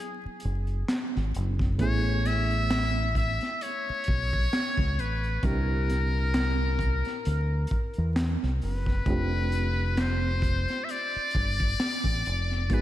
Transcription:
Already playing: F#3 B3 D4 E4 G#4
0.25 muted fingered electric bass stroke
0.40 closed hi-hat
0.45 F#1
0.67 closed hi-hat
0.88 snare, clap, closed hi-hat
1.16 G#1, snare
1.35 F#1, closed hi-hat
1.59 kick, snare
1.78 A1 A3 B3 C#4 E4 C#5, kick, closed hi-hat
1.82 G#4
2.25 E5, snare, closed hi-hat
2.51 closed hi-hat
2.70 snare, clap, closed hi-hat
3.15 E5, kick, closed hi-hat
3.41 snare, closed hi-hat
3.61 C#5, closed hi-hat
3.90 muted fingered electric bass stroke
4.04 closed hi-hat
4.08 B1, kick
4.31 kick, closed hi-hat
4.53 snare, clap, closed hi-hat
4.77 C#2, kick, snare
4.99 A1 B4, closed hi-hat
5.24 closed hi-hat
5.43 C2 A#2 C4 D4 E4 G4 A#4, kick, closed hi-hat
5.90 snare, closed hi-hat
6.34 snare, clap, closed hi-hat
6.79 kick, closed hi-hat
7.05 snare, closed hi-hat
7.25 D2, closed hi-hat
7.67 closed hi-hat
7.71 muted fingered electric bass stroke, kick
7.93 closed hi-hat
7.98 E2
8.16 snare, clap, closed hi-hat
8.43 C2, snare
8.62 F#1 B4, open hi-hat
8.86 kick, snare
9.06 F1 A3 C4 D4 F4 G4, kick, closed hi-hat
9.52 closed hi-hat
9.97 C5, snare, clap, closed hi-hat
10.42 kick, closed hi-hat
10.68 snare, closed hi-hat
10.84 E5
10.89 D5, closed hi-hat
11.16 muted fingered electric bass stroke
11.31 kick, closed hi-hat
11.36 G1
11.60 kick
11.80 snare, clap, closed hi-hat
12.04 A1, kick
12.25 F1, closed hi-hat
12.50 snare, closed hi-hat
12.70 G#1 G#3 B3 D#4 F#4 G#4 B4, kick, closed hi-hat

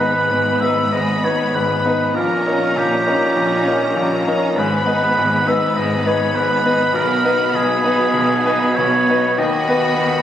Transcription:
Already playing: G#1 G#2 B3 D#4 B4 B5
0.00 B3 D#4 B4
0.13 B3
0.30 G#1 G#2 G#3
0.45 B3
0.60 B3 D#4 B4 E5
0.75 B3
0.92 G#1 G#2 G#3 D#5
1.08 B3
1.24 B3 D#4 B4 C#5
1.38 B3
1.53 G#1 G#2 G#3 B4
1.70 B3
1.85 B3 D#4 B4
2.01 B3
2.14 A#1 A#2 G3 C#4 A#4 A#5
2.29 A#3
2.45 C#4 D#4 A#4
2.62 D#4
2.76 A#1 A#2 C#4 G4
2.92 A#3
3.06 G3 C#4 D#4 A#4
3.21 A#3
3.36 A#1 A#2 C#4
3.51 D#4
3.65 C#4 D#4 A#4
3.81 A#3
3.96 A#1 A#2 G3
4.11 A#3
4.26 C#4 D#4 A#4
4.42 D#4
4.56 G#1 G#2 G#3 B3 B4 B5
4.72 B3
4.86 B3 D#4 B4
5.02 B3
5.17 G#1 G#2 G#3
5.32 B3
5.46 B3 D#4 B4 E5
5.62 B3
5.76 G#1 G#2 G#3 D#5
5.91 B3
6.05 B3 D#4 B4 C#5
6.20 B3
6.35 G#1 G#2 G#3 B4
6.50 B3
6.65 B3 D#4 B4
6.80 B3
6.94 B1 B2 G#3 A#4
7.10 B3
7.24 B3 D#4 B4
7.38 B3
7.54 B1 B2 G#3 G#4
7.69 B3
7.83 B3 D#4 B4
7.97 B3
8.13 B1 B2 G#3
8.28 B3
8.45 B3 D#4 B4
8.61 B3
8.76 B1 B2 G#3 C#5
8.92 B3
9.07 B3 D#4 B4
9.22 B3
9.36 D#2 D#3 B3 F#4 D#5 B5
9.68 B3 F#4 B4
9.98 D#2 D#3

